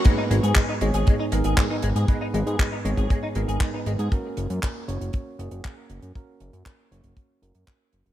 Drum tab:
HH |x-xxx-xxx-xxx-xx|x-xxx-xxx-xxx-xx|x-xxx-xxx-xxx-xx|x-xx--xxx-xxx-xx|
CP |----x-------x---|----x-------x---|----x-------x---|----x-------x---|
BD |o---o---o---o---|o---o--oo---o---|o---o---o---o---|o---o--oo---o---|